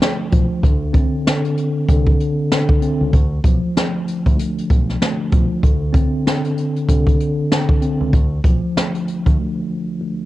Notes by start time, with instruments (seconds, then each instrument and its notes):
Already playing: tine electric piano D2 F3
0.02 tine electric piano D2, snare, closed hi-hat
0.32 fingered electric bass B1, tine electric piano F3, kick, closed hi-hat
0.63 fingered electric bass D2, tine electric piano D3, kick, closed hi-hat
0.93 tine electric piano C4, kick, closed hi-hat
1.27 tine electric piano D3, snare, closed hi-hat
1.45 closed hi-hat
1.58 closed hi-hat
1.89 fingered electric bass C2, tine electric piano D3, kick, closed hi-hat
2.07 kick
2.20 closed hi-hat
2.52 tine electric piano D3, snare, closed hi-hat
2.69 kick
2.82 tine electric piano C4, closed hi-hat
3.01 fingered electric bass C#2
3.13 fingered electric bass D2, tine electric piano D2, kick, closed hi-hat
3.44 fingered electric bass B1, tine electric piano F3, kick, closed hi-hat
3.75 tine electric piano D2, snare, closed hi-hat
4.08 closed hi-hat
4.26 fingered electric bass D2, kick, closed hi-hat
4.38 tine electric piano D2, closed hi-hat
4.58 closed hi-hat
4.70 fingered electric bass B1, kick, closed hi-hat
4.89 snare
5.01 tine electric piano D2, snare, closed hi-hat
5.32 fingered electric bass B1, tine electric piano F3, kick, closed hi-hat
5.63 fingered electric bass D2, tine electric piano D3, kick, closed hi-hat
5.93 tine electric piano C4, kick, closed hi-hat
6.26 tine electric piano D3, snare, closed hi-hat
6.45 closed hi-hat
6.58 closed hi-hat
6.76 closed hi-hat
6.89 fingered electric bass C2, tine electric piano D3, kick, closed hi-hat
7.07 kick, closed hi-hat
7.20 closed hi-hat
7.52 tine electric piano D3, snare, closed hi-hat
7.69 kick
7.82 tine electric piano C4, closed hi-hat
8.01 fingered electric bass C#2
8.13 fingered electric bass D2, tine electric piano D2, kick, closed hi-hat
8.44 fingered electric bass B1, tine electric piano F3, kick, closed hi-hat
8.76 tine electric piano D2, snare, closed hi-hat
8.95 closed hi-hat
9.08 closed hi-hat
9.26 fingered electric bass D2, kick, closed hi-hat
9.38 tine electric piano D2
10.02 tine electric piano D2